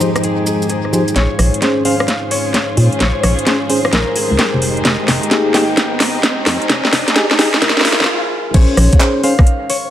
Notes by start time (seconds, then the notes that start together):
Already playing: F3 G#3 D#4 G4 G#4 C5 D#5
0.00 F3 D#4 G4 G#4 C5, maracas
0.16 cross-stick, closed hi-hat, maracas
0.23 G#4, closed hi-hat, maracas
0.47 G#4, maracas
0.62 maracas
0.69 G#4, closed hi-hat, maracas
0.85 cross-stick
0.93 F3 D#4 G4 G#4 C5, maracas
1.08 closed hi-hat, maracas
1.16 A#1 C#4 F4 G#4 C5 C#5, kick, snare, closed hi-hat, riser
1.39 A#1, cross-stick, open hi-hat
1.54 closed hi-hat
1.62 C#4 G#4 C5, kick, snare, closed hi-hat
1.85 C#4 G#4 C5 F5, open hi-hat
2.00 cross-stick
2.08 kick, snare, closed hi-hat
2.31 C#5, open hi-hat
2.54 kick, snare, closed hi-hat
2.77 A#2, open hi-hat
2.93 closed hi-hat
3.00 A#1 C#5, kick, snare, closed hi-hat
3.23 A#1 C#5, cross-stick, open hi-hat
3.39 closed hi-hat
3.47 C#4 G#4 C5, kick, snare, closed hi-hat
3.70 C#4 G#4 C5, open hi-hat
3.85 cross-stick
3.93 A#1 A#4, kick, snare, closed hi-hat
4.16 G#4, open hi-hat
4.31 C#2
4.39 G4, kick, snare, closed hi-hat
4.54 F1
4.62 D#4 G4, open hi-hat
4.77 closed hi-hat
4.85 F1 D#5, kick, snare, closed hi-hat
5.08 F1, snare, open hi-hat
5.23 closed hi-hat
5.31 D#4 G4 G#4, kick, snare, closed hi-hat
5.54 D#4 G4 G#4 G5, snare, open hi-hat
5.77 kick, snare, closed hi-hat
6.00 D#5, snare, open hi-hat
6.23 kick, snare, closed hi-hat
6.46 F2, snare, open hi-hat
6.62 closed hi-hat
6.70 F1 D#5, kick, snare, closed hi-hat
6.85 snare
6.93 F1 D#5, snare, open hi-hat
7.08 snare, closed hi-hat
7.16 D#4 G4 G#4, kick, snare, closed hi-hat
7.31 snare
7.39 D#4 G4 G#4, snare, open hi-hat
7.54 snare
7.62 F1 A#4, kick, snare, closed hi-hat
7.69 snare
7.77 snare
7.81 G#4, snare
7.85 snare, open hi-hat
7.93 snare
8.00 G#1, snare
8.04 snare
8.54 A#1 C#4 G#4 C5 C#5, kick, closed hi-hat, crash
8.77 A#1, cross-stick, open hi-hat
8.93 kick, closed hi-hat
9.00 C#4 G#4 C5, clap, closed hi-hat
9.23 C#4 G#4 C5 F5, open hi-hat
9.39 kick, cross-stick
9.47 closed hi-hat
9.70 C#5, open hi-hat